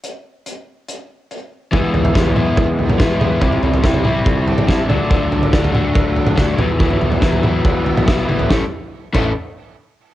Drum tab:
CC |----------------|----------------|----------------|----------------|
HH |x---x---x---x---|----------------|----------------|----------------|
SD |----------------|----o-------o---|----o-------o---|----o-------o---|
T1 |----------------|----------------|----------------|----------------|
T2 |----------------|------o----oo-o-|------o----o--o-|------o----oo-o-|
FT |----------------|o-oo-o--o-oo--o-|oooo-o--o-oo--o-|o-oo-o--o-oo--o-|
BD |----------------|o---o---o---o---|o---o---o---o---|o---o---o---o---|

CC |----------------|------x---------|
HH |----------------|----------------|
SD |----o-------o---|o---------------|
T1 |--------------o-|----------------|
T2 |------o----o----|----------------|
FT |oooo-o--o-oo---o|----------------|
BD |o---o---o---o---|o-----o---------|